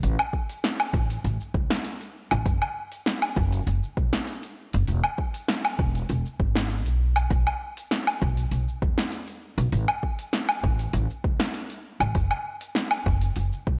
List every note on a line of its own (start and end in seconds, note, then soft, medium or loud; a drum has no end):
0.03 0.14 A1 loud
0.03 open hi-hat medium
0.03 cabasa medium
0.19 cabasa soft
0.19 low woodblock medium
0.33 kick medium
0.50 open hi-hat soft
0.50 cabasa medium
0.64 snare medium
0.64 open hi-hat medium
0.64 cabasa medium
0.80 open hi-hat soft
0.80 cabasa soft
0.80 low woodblock medium
0.94 1.16 A1 loud
0.94 kick loud
1.11 open hi-hat soft
1.11 cabasa medium
1.25 1.36 A1 loud
1.25 open hi-hat medium
1.25 cabasa medium
1.41 cabasa soft
1.55 1.66 C#2 medium
1.55 kick loud
1.71 snare medium
1.71 open hi-hat soft
1.71 cabasa medium
1.85 open hi-hat medium
1.85 cabasa medium
2.01 open hi-hat soft
2.01 cabasa soft
2.31 2.42 A1 loud
2.31 open hi-hat soft
2.31 cabasa medium
2.31 low woodblock medium
2.46 2.57 F#1 medium
2.46 kick loud
2.46 open hi-hat medium
2.46 cabasa medium
2.62 cabasa soft
2.62 low woodblock medium
2.92 open hi-hat soft
2.92 cabasa medium
3.06 snare medium
3.06 open hi-hat medium
3.06 cabasa medium
3.22 open hi-hat soft
3.22 cabasa soft
3.22 low woodblock medium
3.36 3.58 F#1 loud
3.36 kick loud
3.52 open hi-hat soft
3.52 cabasa medium
3.67 3.78 F#1 loud
3.67 open hi-hat medium
3.67 cabasa medium
3.83 cabasa soft
3.97 4.08 B1 medium
3.97 kick loud
4.13 snare medium
4.13 open hi-hat soft
4.13 cabasa medium
4.27 open hi-hat medium
4.27 cabasa medium
4.43 open hi-hat soft
4.43 cabasa soft
4.73 4.84 F#1 loud
4.73 open hi-hat soft
4.73 cabasa medium
4.87 4.99 E1 medium
4.87 open hi-hat soft
4.87 cabasa medium
5.03 cabasa soft
5.03 low woodblock medium
5.18 kick medium
5.34 open hi-hat soft
5.34 cabasa medium
5.48 snare medium
5.48 open hi-hat medium
5.48 cabasa medium
5.65 open hi-hat soft
5.65 cabasa soft
5.65 low woodblock medium
5.79 6.01 E1 loud
5.79 kick loud
5.95 open hi-hat soft
5.95 cabasa medium
6.09 6.20 E1 loud
6.09 open hi-hat medium
6.09 cabasa medium
6.25 cabasa soft
6.39 6.85 G#1 medium
6.39 kick loud
6.55 snare medium
6.55 open hi-hat soft
6.55 cabasa medium
6.70 open hi-hat medium
6.70 cabasa medium
6.85 7.23 B1 medium
6.85 open hi-hat soft
6.85 cabasa soft
7.16 open hi-hat soft
7.16 cabasa medium
7.16 low woodblock medium
7.30 7.42 B1 loud
7.30 kick loud
7.30 open hi-hat soft
7.30 cabasa medium
7.47 cabasa soft
7.47 low woodblock medium
7.77 open hi-hat soft
7.77 cabasa medium
7.91 snare medium
7.91 open hi-hat medium
7.91 cabasa medium
8.07 open hi-hat soft
8.07 cabasa soft
8.07 low woodblock medium
8.22 8.43 B1 loud
8.22 kick loud
8.37 open hi-hat soft
8.37 cabasa medium
8.51 8.63 B1 medium
8.51 open hi-hat medium
8.51 cabasa medium
8.68 cabasa soft
8.82 8.93 E2 medium
8.82 kick loud
8.98 snare medium
8.98 open hi-hat soft
8.98 cabasa medium
9.12 open hi-hat medium
9.12 cabasa medium
9.28 open hi-hat soft
9.28 cabasa soft
9.58 9.68 B1 loud
9.58 open hi-hat soft
9.58 cabasa medium
9.73 9.84 A1 loud
9.73 open hi-hat medium
9.73 cabasa medium
9.89 cabasa soft
9.89 low woodblock medium
10.03 kick medium
10.19 open hi-hat soft
10.19 cabasa medium
10.33 snare medium
10.33 open hi-hat medium
10.33 cabasa medium
10.49 open hi-hat soft
10.49 cabasa soft
10.49 low woodblock medium
10.64 10.86 A1 loud
10.64 kick loud
10.79 open hi-hat soft
10.79 cabasa medium
10.93 11.05 A1 loud
10.93 open hi-hat medium
10.93 cabasa medium
11.10 cabasa soft
11.24 11.36 C#2 medium
11.24 kick loud
11.40 snare medium
11.40 open hi-hat soft
11.40 cabasa medium
11.54 open hi-hat medium
11.54 cabasa medium
11.70 open hi-hat soft
11.70 cabasa soft
12.00 12.11 A1 loud
12.00 open hi-hat soft
12.00 cabasa medium
12.00 low woodblock medium
12.15 12.26 F#1 loud
12.15 kick loud
12.15 open hi-hat medium
12.15 cabasa medium
12.31 cabasa soft
12.31 low woodblock medium
12.61 open hi-hat soft
12.61 cabasa medium
12.75 snare medium
12.75 open hi-hat medium
12.75 cabasa medium
12.91 open hi-hat soft
12.91 cabasa soft
12.91 low woodblock medium
13.06 13.28 F#1 loud
13.06 kick loud
13.21 open hi-hat soft
13.21 cabasa medium
13.35 13.48 F#1 medium
13.35 open hi-hat medium
13.35 cabasa medium
13.52 cabasa soft
13.67 13.78 B1 medium
13.67 kick loud